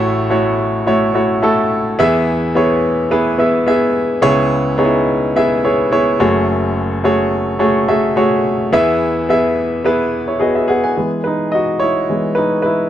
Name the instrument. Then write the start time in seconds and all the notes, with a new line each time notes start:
grand piano
Already playing: A1 A2 A3 E4 F#4 C#5
0.30 A3 E4 F#4 C#5
0.87 A3 E4 F#4 C#5
1.14 A3 E4 F#4 C#5
1.42 A3 E4 F#4 A4
1.99 E2 E3 B3 E4 G#4 E5
2.55 B3 E4 G#4 C#5
3.11 B3 E4 G#4 B4
3.38 B3 E4 G#4 E5
3.67 B3 E4 G#4 E5
4.22 C#2 C#3 B3 E4 G#4 C#5
4.78 B3 D#4 G#4 C#5
4.85 E4
5.36 B3 E4 G#4 E5
5.64 B3 E4 G#4 C#5
5.91 B3 E4 G#4 C#5
6.20 F#1 F#2 A3 F#4 G#4 C#5
7.04 A3 F#4 G#4 C#5
7.59 A3 F#4 G#4 C#5
7.88 A3 F#4 G#4 E5
8.16 A3 F#4 G#4 C#5
8.73 E2 E3 B3 E4 G#4 E5
9.29 B3 E4 G#4 E5
9.84 B3 E4 G#4 B4
10.28 E4 C#5
10.39 B3 F#4 G#4 D#5
10.55 G#4 E5
10.68 B3 G#4 F#5
10.84 B4 G#5
10.97 E3 G#3 B3
11.24 D#4 B4
11.52 F#4 D#5
11.80 E4 C#5
12.09 E3 G#3 B3
12.35 D#4 B4
12.62 E4 B4